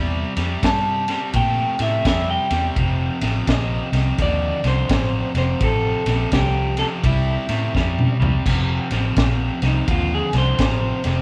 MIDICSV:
0, 0, Header, 1, 5, 480
1, 0, Start_track
1, 0, Key_signature, -1, "major"
1, 0, Tempo, 711744
1, 1864, Time_signature, 4, 2, 24, 8
1, 7566, End_track
2, 0, Start_track
2, 0, Title_t, "Clean electric guitar"
2, 0, Program_c, 0, 27
2, 439, Note_on_c, 0, 81, 93
2, 916, Note_off_c, 0, 81, 0
2, 918, Note_on_c, 0, 79, 95
2, 1224, Note_off_c, 0, 79, 0
2, 1228, Note_on_c, 0, 76, 81
2, 1389, Note_off_c, 0, 76, 0
2, 1397, Note_on_c, 0, 76, 85
2, 1540, Note_off_c, 0, 76, 0
2, 1554, Note_on_c, 0, 79, 72
2, 1792, Note_off_c, 0, 79, 0
2, 2364, Note_on_c, 0, 75, 95
2, 2843, Note_off_c, 0, 75, 0
2, 2846, Note_on_c, 0, 74, 98
2, 3148, Note_off_c, 0, 74, 0
2, 3153, Note_on_c, 0, 72, 95
2, 3622, Note_off_c, 0, 72, 0
2, 3630, Note_on_c, 0, 72, 86
2, 3800, Note_on_c, 0, 69, 83
2, 3801, Note_off_c, 0, 72, 0
2, 4246, Note_off_c, 0, 69, 0
2, 4278, Note_on_c, 0, 67, 77
2, 4577, Note_on_c, 0, 69, 79
2, 4584, Note_off_c, 0, 67, 0
2, 4623, Note_off_c, 0, 69, 0
2, 4758, Note_on_c, 0, 64, 72
2, 5508, Note_off_c, 0, 64, 0
2, 6518, Note_on_c, 0, 63, 76
2, 6667, Note_off_c, 0, 63, 0
2, 6683, Note_on_c, 0, 65, 88
2, 6829, Note_off_c, 0, 65, 0
2, 6842, Note_on_c, 0, 68, 82
2, 6989, Note_off_c, 0, 68, 0
2, 7000, Note_on_c, 0, 72, 89
2, 7566, Note_off_c, 0, 72, 0
2, 7566, End_track
3, 0, Start_track
3, 0, Title_t, "Overdriven electric guitar"
3, 0, Program_c, 1, 29
3, 0, Note_on_c, 1, 48, 77
3, 0, Note_on_c, 1, 55, 99
3, 216, Note_off_c, 1, 48, 0
3, 217, Note_off_c, 1, 55, 0
3, 244, Note_on_c, 1, 48, 73
3, 249, Note_on_c, 1, 55, 85
3, 405, Note_off_c, 1, 48, 0
3, 407, Note_off_c, 1, 55, 0
3, 424, Note_on_c, 1, 48, 73
3, 429, Note_on_c, 1, 55, 86
3, 697, Note_off_c, 1, 48, 0
3, 700, Note_off_c, 1, 55, 0
3, 731, Note_on_c, 1, 48, 74
3, 734, Note_on_c, 1, 55, 76
3, 888, Note_off_c, 1, 48, 0
3, 889, Note_off_c, 1, 55, 0
3, 904, Note_on_c, 1, 48, 73
3, 906, Note_on_c, 1, 57, 81
3, 1177, Note_off_c, 1, 48, 0
3, 1178, Note_off_c, 1, 57, 0
3, 1209, Note_on_c, 1, 48, 72
3, 1212, Note_on_c, 1, 57, 78
3, 1367, Note_off_c, 1, 48, 0
3, 1369, Note_off_c, 1, 57, 0
3, 1383, Note_on_c, 1, 48, 86
3, 1387, Note_on_c, 1, 55, 96
3, 1657, Note_off_c, 1, 48, 0
3, 1659, Note_off_c, 1, 55, 0
3, 1689, Note_on_c, 1, 48, 76
3, 1692, Note_on_c, 1, 55, 73
3, 1847, Note_off_c, 1, 48, 0
3, 1849, Note_off_c, 1, 55, 0
3, 1868, Note_on_c, 1, 41, 77
3, 1872, Note_on_c, 1, 48, 92
3, 2140, Note_off_c, 1, 41, 0
3, 2142, Note_off_c, 1, 48, 0
3, 2170, Note_on_c, 1, 41, 70
3, 2174, Note_on_c, 1, 48, 83
3, 2328, Note_off_c, 1, 41, 0
3, 2330, Note_off_c, 1, 48, 0
3, 2345, Note_on_c, 1, 41, 79
3, 2349, Note_on_c, 1, 48, 93
3, 2618, Note_off_c, 1, 41, 0
3, 2620, Note_off_c, 1, 48, 0
3, 2649, Note_on_c, 1, 41, 82
3, 2652, Note_on_c, 1, 48, 78
3, 2808, Note_off_c, 1, 41, 0
3, 2809, Note_off_c, 1, 48, 0
3, 2824, Note_on_c, 1, 41, 81
3, 2826, Note_on_c, 1, 50, 78
3, 3098, Note_off_c, 1, 41, 0
3, 3099, Note_off_c, 1, 50, 0
3, 3128, Note_on_c, 1, 41, 75
3, 3131, Note_on_c, 1, 50, 72
3, 3287, Note_off_c, 1, 41, 0
3, 3288, Note_off_c, 1, 50, 0
3, 3304, Note_on_c, 1, 41, 86
3, 3306, Note_on_c, 1, 48, 88
3, 3578, Note_off_c, 1, 41, 0
3, 3579, Note_off_c, 1, 48, 0
3, 3608, Note_on_c, 1, 41, 71
3, 3611, Note_on_c, 1, 48, 75
3, 3767, Note_off_c, 1, 41, 0
3, 3768, Note_off_c, 1, 48, 0
3, 3786, Note_on_c, 1, 41, 90
3, 3791, Note_on_c, 1, 48, 88
3, 4059, Note_off_c, 1, 41, 0
3, 4061, Note_off_c, 1, 48, 0
3, 4091, Note_on_c, 1, 41, 72
3, 4094, Note_on_c, 1, 48, 86
3, 4249, Note_off_c, 1, 41, 0
3, 4250, Note_off_c, 1, 48, 0
3, 4268, Note_on_c, 1, 41, 76
3, 4271, Note_on_c, 1, 48, 89
3, 4540, Note_off_c, 1, 41, 0
3, 4542, Note_off_c, 1, 48, 0
3, 4575, Note_on_c, 1, 41, 73
3, 4579, Note_on_c, 1, 48, 79
3, 4731, Note_off_c, 1, 41, 0
3, 4733, Note_off_c, 1, 48, 0
3, 4748, Note_on_c, 1, 48, 70
3, 4750, Note_on_c, 1, 55, 83
3, 5020, Note_off_c, 1, 48, 0
3, 5021, Note_off_c, 1, 55, 0
3, 5053, Note_on_c, 1, 48, 71
3, 5055, Note_on_c, 1, 57, 72
3, 5210, Note_off_c, 1, 48, 0
3, 5211, Note_off_c, 1, 57, 0
3, 5231, Note_on_c, 1, 48, 80
3, 5235, Note_on_c, 1, 55, 80
3, 5501, Note_off_c, 1, 48, 0
3, 5503, Note_off_c, 1, 55, 0
3, 5529, Note_on_c, 1, 48, 65
3, 5531, Note_on_c, 1, 55, 74
3, 5688, Note_off_c, 1, 48, 0
3, 5689, Note_off_c, 1, 55, 0
3, 5706, Note_on_c, 1, 41, 80
3, 5710, Note_on_c, 1, 48, 85
3, 5979, Note_off_c, 1, 41, 0
3, 5981, Note_off_c, 1, 48, 0
3, 6011, Note_on_c, 1, 41, 77
3, 6015, Note_on_c, 1, 48, 87
3, 6168, Note_off_c, 1, 41, 0
3, 6170, Note_off_c, 1, 48, 0
3, 6190, Note_on_c, 1, 41, 80
3, 6192, Note_on_c, 1, 48, 81
3, 6460, Note_off_c, 1, 41, 0
3, 6462, Note_off_c, 1, 48, 0
3, 6490, Note_on_c, 1, 41, 70
3, 6495, Note_on_c, 1, 48, 86
3, 6648, Note_off_c, 1, 41, 0
3, 6650, Note_off_c, 1, 48, 0
3, 6663, Note_on_c, 1, 41, 81
3, 6665, Note_on_c, 1, 50, 78
3, 6937, Note_off_c, 1, 41, 0
3, 6938, Note_off_c, 1, 50, 0
3, 6968, Note_on_c, 1, 41, 74
3, 6971, Note_on_c, 1, 50, 83
3, 7127, Note_off_c, 1, 41, 0
3, 7128, Note_off_c, 1, 50, 0
3, 7144, Note_on_c, 1, 41, 77
3, 7148, Note_on_c, 1, 48, 79
3, 7417, Note_off_c, 1, 41, 0
3, 7419, Note_off_c, 1, 48, 0
3, 7446, Note_on_c, 1, 41, 75
3, 7449, Note_on_c, 1, 48, 83
3, 7566, Note_off_c, 1, 41, 0
3, 7566, Note_off_c, 1, 48, 0
3, 7566, End_track
4, 0, Start_track
4, 0, Title_t, "Fingered electric bass"
4, 0, Program_c, 2, 33
4, 0, Note_on_c, 2, 40, 92
4, 158, Note_off_c, 2, 40, 0
4, 247, Note_on_c, 2, 41, 77
4, 372, Note_off_c, 2, 41, 0
4, 424, Note_on_c, 2, 43, 86
4, 763, Note_off_c, 2, 43, 0
4, 900, Note_on_c, 2, 46, 86
4, 1116, Note_off_c, 2, 46, 0
4, 1210, Note_on_c, 2, 45, 82
4, 1333, Note_off_c, 2, 45, 0
4, 1383, Note_on_c, 2, 41, 90
4, 1597, Note_off_c, 2, 41, 0
4, 1690, Note_on_c, 2, 40, 82
4, 1813, Note_off_c, 2, 40, 0
4, 1865, Note_on_c, 2, 29, 91
4, 2079, Note_off_c, 2, 29, 0
4, 2169, Note_on_c, 2, 33, 84
4, 2293, Note_off_c, 2, 33, 0
4, 2340, Note_on_c, 2, 34, 86
4, 2556, Note_off_c, 2, 34, 0
4, 2645, Note_on_c, 2, 36, 81
4, 2770, Note_off_c, 2, 36, 0
4, 2822, Note_on_c, 2, 39, 89
4, 3037, Note_off_c, 2, 39, 0
4, 3126, Note_on_c, 2, 36, 81
4, 3251, Note_off_c, 2, 36, 0
4, 3302, Note_on_c, 2, 33, 94
4, 3517, Note_off_c, 2, 33, 0
4, 3604, Note_on_c, 2, 29, 86
4, 3730, Note_off_c, 2, 29, 0
4, 3782, Note_on_c, 2, 33, 93
4, 3997, Note_off_c, 2, 33, 0
4, 4085, Note_on_c, 2, 34, 84
4, 4211, Note_off_c, 2, 34, 0
4, 4261, Note_on_c, 2, 36, 85
4, 4601, Note_off_c, 2, 36, 0
4, 4745, Note_on_c, 2, 36, 84
4, 4960, Note_off_c, 2, 36, 0
4, 5050, Note_on_c, 2, 45, 82
4, 5174, Note_off_c, 2, 45, 0
4, 5224, Note_on_c, 2, 41, 86
4, 5438, Note_off_c, 2, 41, 0
4, 5528, Note_on_c, 2, 36, 80
4, 5653, Note_off_c, 2, 36, 0
4, 5705, Note_on_c, 2, 29, 89
4, 5919, Note_off_c, 2, 29, 0
4, 6011, Note_on_c, 2, 33, 83
4, 6135, Note_off_c, 2, 33, 0
4, 6183, Note_on_c, 2, 34, 87
4, 6398, Note_off_c, 2, 34, 0
4, 6487, Note_on_c, 2, 36, 78
4, 6612, Note_off_c, 2, 36, 0
4, 6661, Note_on_c, 2, 39, 86
4, 6876, Note_off_c, 2, 39, 0
4, 6968, Note_on_c, 2, 36, 83
4, 7093, Note_off_c, 2, 36, 0
4, 7141, Note_on_c, 2, 33, 92
4, 7356, Note_off_c, 2, 33, 0
4, 7451, Note_on_c, 2, 29, 81
4, 7566, Note_off_c, 2, 29, 0
4, 7566, End_track
5, 0, Start_track
5, 0, Title_t, "Drums"
5, 247, Note_on_c, 9, 51, 64
5, 257, Note_on_c, 9, 38, 36
5, 314, Note_off_c, 9, 51, 0
5, 324, Note_off_c, 9, 38, 0
5, 424, Note_on_c, 9, 36, 80
5, 424, Note_on_c, 9, 51, 83
5, 434, Note_on_c, 9, 38, 98
5, 491, Note_off_c, 9, 51, 0
5, 492, Note_off_c, 9, 36, 0
5, 501, Note_off_c, 9, 38, 0
5, 727, Note_on_c, 9, 51, 56
5, 737, Note_on_c, 9, 38, 32
5, 794, Note_off_c, 9, 51, 0
5, 805, Note_off_c, 9, 38, 0
5, 900, Note_on_c, 9, 51, 84
5, 902, Note_on_c, 9, 36, 82
5, 968, Note_off_c, 9, 51, 0
5, 970, Note_off_c, 9, 36, 0
5, 1206, Note_on_c, 9, 51, 62
5, 1217, Note_on_c, 9, 38, 32
5, 1274, Note_off_c, 9, 51, 0
5, 1284, Note_off_c, 9, 38, 0
5, 1383, Note_on_c, 9, 36, 77
5, 1383, Note_on_c, 9, 51, 78
5, 1393, Note_on_c, 9, 38, 94
5, 1450, Note_off_c, 9, 36, 0
5, 1451, Note_off_c, 9, 51, 0
5, 1461, Note_off_c, 9, 38, 0
5, 1689, Note_on_c, 9, 51, 61
5, 1699, Note_on_c, 9, 38, 34
5, 1757, Note_off_c, 9, 51, 0
5, 1767, Note_off_c, 9, 38, 0
5, 1863, Note_on_c, 9, 36, 80
5, 1863, Note_on_c, 9, 51, 73
5, 1931, Note_off_c, 9, 36, 0
5, 1931, Note_off_c, 9, 51, 0
5, 2167, Note_on_c, 9, 51, 61
5, 2177, Note_on_c, 9, 38, 36
5, 2234, Note_off_c, 9, 51, 0
5, 2244, Note_off_c, 9, 38, 0
5, 2343, Note_on_c, 9, 36, 82
5, 2343, Note_on_c, 9, 51, 81
5, 2353, Note_on_c, 9, 38, 102
5, 2410, Note_off_c, 9, 36, 0
5, 2410, Note_off_c, 9, 51, 0
5, 2420, Note_off_c, 9, 38, 0
5, 2651, Note_on_c, 9, 51, 58
5, 2661, Note_on_c, 9, 38, 32
5, 2719, Note_off_c, 9, 51, 0
5, 2729, Note_off_c, 9, 38, 0
5, 2822, Note_on_c, 9, 51, 79
5, 2823, Note_on_c, 9, 36, 81
5, 2832, Note_on_c, 9, 38, 30
5, 2889, Note_off_c, 9, 51, 0
5, 2890, Note_off_c, 9, 36, 0
5, 2899, Note_off_c, 9, 38, 0
5, 3128, Note_on_c, 9, 51, 58
5, 3139, Note_on_c, 9, 38, 33
5, 3196, Note_off_c, 9, 51, 0
5, 3206, Note_off_c, 9, 38, 0
5, 3300, Note_on_c, 9, 51, 77
5, 3301, Note_on_c, 9, 36, 79
5, 3310, Note_on_c, 9, 38, 100
5, 3367, Note_off_c, 9, 51, 0
5, 3369, Note_off_c, 9, 36, 0
5, 3377, Note_off_c, 9, 38, 0
5, 3607, Note_on_c, 9, 51, 57
5, 3617, Note_on_c, 9, 38, 33
5, 3674, Note_off_c, 9, 51, 0
5, 3684, Note_off_c, 9, 38, 0
5, 3780, Note_on_c, 9, 51, 72
5, 3782, Note_on_c, 9, 36, 80
5, 3848, Note_off_c, 9, 51, 0
5, 3849, Note_off_c, 9, 36, 0
5, 4087, Note_on_c, 9, 51, 61
5, 4097, Note_on_c, 9, 38, 34
5, 4154, Note_off_c, 9, 51, 0
5, 4164, Note_off_c, 9, 38, 0
5, 4260, Note_on_c, 9, 51, 78
5, 4262, Note_on_c, 9, 36, 78
5, 4270, Note_on_c, 9, 38, 101
5, 4327, Note_off_c, 9, 51, 0
5, 4330, Note_off_c, 9, 36, 0
5, 4337, Note_off_c, 9, 38, 0
5, 4564, Note_on_c, 9, 51, 58
5, 4575, Note_on_c, 9, 38, 33
5, 4632, Note_off_c, 9, 51, 0
5, 4642, Note_off_c, 9, 38, 0
5, 4745, Note_on_c, 9, 36, 80
5, 4746, Note_on_c, 9, 51, 84
5, 4812, Note_off_c, 9, 36, 0
5, 4813, Note_off_c, 9, 51, 0
5, 5049, Note_on_c, 9, 51, 62
5, 5059, Note_on_c, 9, 38, 32
5, 5116, Note_off_c, 9, 51, 0
5, 5127, Note_off_c, 9, 38, 0
5, 5225, Note_on_c, 9, 36, 79
5, 5236, Note_on_c, 9, 38, 56
5, 5292, Note_off_c, 9, 36, 0
5, 5303, Note_off_c, 9, 38, 0
5, 5386, Note_on_c, 9, 47, 65
5, 5454, Note_off_c, 9, 47, 0
5, 5544, Note_on_c, 9, 43, 100
5, 5612, Note_off_c, 9, 43, 0
5, 5703, Note_on_c, 9, 36, 80
5, 5705, Note_on_c, 9, 49, 92
5, 5715, Note_on_c, 9, 38, 31
5, 5771, Note_off_c, 9, 36, 0
5, 5773, Note_off_c, 9, 49, 0
5, 5783, Note_off_c, 9, 38, 0
5, 6006, Note_on_c, 9, 51, 58
5, 6016, Note_on_c, 9, 38, 33
5, 6073, Note_off_c, 9, 51, 0
5, 6084, Note_off_c, 9, 38, 0
5, 6181, Note_on_c, 9, 51, 76
5, 6182, Note_on_c, 9, 36, 84
5, 6191, Note_on_c, 9, 38, 105
5, 6248, Note_off_c, 9, 51, 0
5, 6250, Note_off_c, 9, 36, 0
5, 6258, Note_off_c, 9, 38, 0
5, 6487, Note_on_c, 9, 51, 56
5, 6497, Note_on_c, 9, 38, 33
5, 6554, Note_off_c, 9, 51, 0
5, 6564, Note_off_c, 9, 38, 0
5, 6661, Note_on_c, 9, 51, 76
5, 6662, Note_on_c, 9, 36, 84
5, 6729, Note_off_c, 9, 36, 0
5, 6729, Note_off_c, 9, 51, 0
5, 6966, Note_on_c, 9, 51, 58
5, 6977, Note_on_c, 9, 38, 35
5, 7034, Note_off_c, 9, 51, 0
5, 7044, Note_off_c, 9, 38, 0
5, 7139, Note_on_c, 9, 51, 75
5, 7141, Note_on_c, 9, 36, 79
5, 7149, Note_on_c, 9, 38, 99
5, 7206, Note_off_c, 9, 51, 0
5, 7209, Note_off_c, 9, 36, 0
5, 7216, Note_off_c, 9, 38, 0
5, 7444, Note_on_c, 9, 51, 59
5, 7454, Note_on_c, 9, 38, 35
5, 7511, Note_off_c, 9, 51, 0
5, 7521, Note_off_c, 9, 38, 0
5, 7566, End_track
0, 0, End_of_file